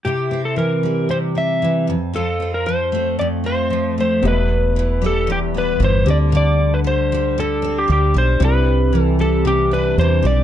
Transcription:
0.05 steel-string acoustic guitar C3 E4, electric slide guitar G4
0.31 steel-string acoustic guitar C4
0.45 electric slide guitar A4
0.56 steel-string acoustic guitar E3, electric slide guitar A#4
0.83 steel-string acoustic guitar G3
1.09 steel-string acoustic guitar C3, electric slide guitar C5
1.35 steel-string acoustic guitar C4, electric slide guitar E5
1.62 steel-string acoustic guitar E3
1.87 steel-string acoustic guitar F2
2.13 steel-string acoustic guitar F2 F4, electric slide guitar A4
2.40 steel-string acoustic guitar C4
2.54 electric slide guitar A#4
2.66 steel-string acoustic guitar F3, electric slide guitar C5
2.92 steel-string acoustic guitar A3
3.19 steel-string acoustic guitar F2, electric slide guitar D5
3.44 steel-string acoustic guitar C4, electric slide guitar C5
3.70 steel-string acoustic guitar F3
3.98 steel-string acoustic guitar A3, electric slide guitar C5
4.22 fingered electric bass E1, steel-string acoustic guitar E2, felt piano B3 G4
4.26 electric slide guitar B4, felt piano D#5
4.32 felt piano E5
4.76 steel-string acoustic guitar E3
5.02 steel-string acoustic guitar G3
5.06 electric slide guitar A4
5.27 steel-string acoustic guitar E2
5.32 electric slide guitar G4
5.54 steel-string acoustic guitar B3, electric slide guitar B4
5.80 fingered electric bass G1, steel-string acoustic guitar E3
5.84 electric slide guitar C5
6.05 fingered electric bass D2, steel-string acoustic guitar D3, felt piano C4 G4
6.09 felt piano D5, electric slide guitar D5
6.32 steel-string acoustic guitar D3
6.37 electric slide guitar D5
6.74 electric slide guitar B4
6.84 steel-string acoustic guitar G3, electric slide guitar C5
7.12 steel-string acoustic guitar G3
7.38 steel-string acoustic guitar D3, electric slide guitar A4
7.62 steel-string acoustic guitar C4
7.78 electric slide guitar G4
7.88 fingered electric bass D2, steel-string acoustic guitar G3
7.92 electric slide guitar G4
8.14 fingered electric bass B1, steel-string acoustic guitar G3
8.18 electric slide guitar C5
8.39 fingered electric bass C2, steel-string acoustic guitar C3, felt piano C4 E4 D5
8.45 electric slide guitar B4
8.93 steel-string acoustic guitar E3
9.02 electric slide guitar A4
9.19 steel-string acoustic guitar G3, electric slide guitar A4
9.45 steel-string acoustic guitar C3, electric slide guitar G4
9.71 steel-string acoustic guitar D4, electric slide guitar B4
9.98 fingered electric bass E2, steel-string acoustic guitar E3, electric slide guitar C5
10.22 fingered electric bass B1, steel-string acoustic guitar G3
10.27 electric slide guitar D5

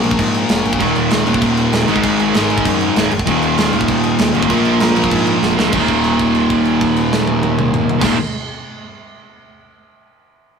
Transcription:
Already playing: picked electric bass A#1, distorted electric guitar A#2 F3 A#3
0.02 distorted electric guitar A#2 F3 A#3, crash
0.11 kick
0.19 picked electric bass G#2, kick, crash
0.34 crash
0.49 picked electric bass F1, snare, crash
0.65 picked electric bass G#1, crash
0.73 kick
0.79 picked electric bass D#1, distorted electric guitar D#2 A#2 D#3, kick, crash
0.96 picked electric bass D#1, crash
1.11 picked electric bass D#1, snare, crash
1.25 picked electric bass D#1, distorted electric guitar D#2 A#2 D#3, crash
1.34 kick
1.41 picked electric bass D#1, kick, crash
1.57 crash
1.73 picked electric bass D#1, snare, crash
1.87 picked electric bass G#1, distorted electric guitar G#2 D#3 G#3, crash
1.96 kick
2.04 picked electric bass G#1, kick, crash
2.19 picked electric bass G#1, crash
2.33 picked electric bass G#1, distorted electric guitar G#2 D#3, snare, crash
2.37 distorted electric guitar G#3
2.50 crash
2.58 kick
2.65 picked electric bass F#2, kick, crash
2.81 crash
2.95 picked electric bass D#1, overdriven electric guitar G#2 D#3 G#3, snare, crash
3.12 picked electric bass F#1, crash
3.19 kick
3.26 picked electric bass D#1, distorted electric guitar D#2 A#2 D#3, kick, crash
3.42 picked electric bass D#1, crash
3.58 picked electric bass D#1, snare, crash
3.72 picked electric bass D#1, distorted electric guitar D#2 A#2 D#3, crash
3.81 kick
3.88 picked electric bass D#1, kick, crash
4.03 crash
4.19 picked electric bass D#1, snare, crash
4.34 picked electric bass A1, overdriven electric guitar D#2 A#2 D#3, crash
4.43 kick
4.48 picked electric bass A#1, distorted electric guitar A#2 F3 A#3, kick, crash
4.65 picked electric bass A#1, crash
4.80 picked electric bass A#1, snare, crash
4.95 distorted electric guitar A#2 F3 A#3, crash
5.04 kick
5.11 picked electric bass G#2, kick, crash
5.27 crash
5.43 picked electric bass F1, snare
5.57 picked electric bass D2, overdriven electric guitar A#2 F3 A#3, snare
5.72 picked electric bass D#1, distorted electric guitar D#2 A#2, kick, crash
5.76 distorted electric guitar D#3
5.88 kick, crash
6.04 crash
6.19 kick, crash
6.35 crash
6.50 kick, crash
6.65 crash
6.81 kick, crash
6.96 crash
7.13 snare
7.27 high tom
7.43 high tom
7.59 mid tom
7.74 mid tom
7.89 floor tom
8.00 picked electric bass D#1, distorted electric guitar D#2 A#2 D#3, kick, snare, crash

